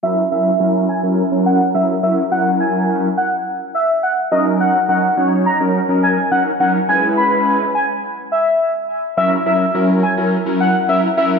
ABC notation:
X:1
M:4/4
L:1/16
Q:1/4=105
K:F#mix
V:1 name="Analog synth lead"
e2 e3 z g z3 f2 e z e z | f2 g3 z f z3 e2 f z d z | f2 f3 z a z3 g2 f z f z | g2 b3 z g z3 e3 z3 |
e2 e3 z g z3 f2 e z e z |]
V:2 name="Analog polysynth"
[F,CEA] z [F,CEA] z [F,CEA]2 z [F,CEA] z [F,CEA]2 z [F,CEA] z [F,CEA] z | [F,CEA]4- [F,CEA] z8 z [F,CDA]2- | [F,CDA] z [F,CDA] z [F,CDc]2 z [F,CDA] z [F,CDA]2 z [F,CDA] z [F,CDA] z | [G,CEB]4- [G,CEB] z8 z3 |
[F,CEA] z [F,CEA] z [F,CEA]2 z [F,CEA] z [F,CEA]2 z [F,CEA] z [F,CEA] z |]